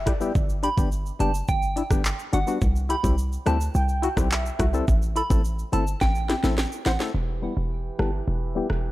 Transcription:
0.06 F#1 E4 G4 D5, kick, cross-stick, closed hi-hat, shaker
0.20 G3 B3 E4 G4, shaker
0.35 G1, kick, shaker
0.50 shaker
0.63 D4 G4 B5, closed hi-hat, shaker
0.77 G1 G3 B3 D4 G4, kick, shaker
0.92 shaker
1.06 shaker
1.19 F#1 G3 B3 D4 G4 A5, closed hi-hat, shaker
1.34 shaker
1.48 G1 G5, kick, shaker
1.62 shaker
1.76 D4 E4, closed hi-hat, shaker
1.90 G1 G3 B3 D4 G4, kick, cross-stick, shaker
2.05 clap, shaker
2.19 shaker
2.33 G1 D4 F#4 F#5, closed hi-hat, shaker
2.47 G3 B3 D4 F#4, shaker
2.62 C2, kick, shaker
2.76 shaker
2.89 E4 G4 B5, closed hi-hat, shaker
3.03 C2 G3 C4 E4 G4, kick, shaker
3.18 shaker
3.33 shaker
3.46 D2 G3 C4 E4 G4 A5, cross-stick, closed hi-hat, shaker
3.61 shaker
3.75 C2 G5, shaker
3.89 G5, shaker
4.02 E4 F#4, closed hi-hat, shaker
4.17 B1 G3 C4 E4 G4, kick, cross-stick, shaker
4.31 E5, clap, shaker
4.46 shaker
4.59 C2 E4 F#4, kick, cross-stick, closed hi-hat, shaker
4.73 G3 C4 E4 A4, shaker
4.88 A1, kick, shaker
5.02 shaker
5.16 E4 A4 B5, closed hi-hat, shaker
5.30 A1 A3 C4 E4 A4, kick, shaker
5.45 shaker
5.59 shaker
5.72 G1 A3 C4 E4 A4 A5, closed hi-hat, shaker
5.87 shaker
6.01 A1 G5, kick, snare, shaker
6.15 shaker
6.29 E4 G4, snare, closed hi-hat, shaker
6.43 A1 A3 C4 E4 A4, snare, shaker
6.58 snare, shaker
6.72 shaker
6.85 A1 E4 C5 F#5, snare, closed hi-hat, shaker
6.99 A3 C4 E4 A4, snare, shaker
7.14 E1 E3 E4 G4 B4
7.42 G3 B3 E4 G4 B5
7.57 E1
7.99 G1 G3 B3 E4 G4 A5, cross-stick
8.28 E1
8.55 G3 B3 E4 G4
8.70 E1, cross-stick

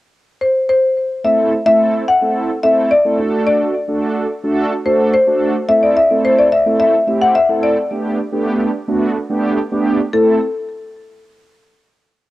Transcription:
0.41 C5
0.69 C5
1.24 A3 C4 E4 A4 E5
1.66 A3 C4 E4 A4 E5
2.08 F#5
2.21 A3 C4 E4 A4
2.63 A3 C4 E4 A4 E5
2.91 D5
3.05 A3 C4 E4 A4
3.19 A3 D4 F#4 A4
3.47 D5
3.88 A3 D4 F#4 A4
4.44 A3 D4 F#4 A4
4.85 A3 D4 F#4 A4 C5
5.14 C5
5.27 A3 D4 F#4 A4
5.68 A3 C4 E4 A4 E5
5.83 D5
5.96 E5
6.10 A3 C4 E4 A4
6.25 C5
6.38 D5
6.52 E5
6.66 A3 C4 E4 A4
6.80 E5
7.07 A3 C4 E4 G4
7.22 F#5
7.35 E5
7.49 A3 C4 E4 A4
7.63 D5
7.91 A3 B3 D4 G4
8.32 A3 B3 D4 G4
8.88 A3 B3 D4 F#4
9.30 A3 B3 D4 G4
9.71 A3 B3 D4 G4
10.13 A3 C4 E4 A4

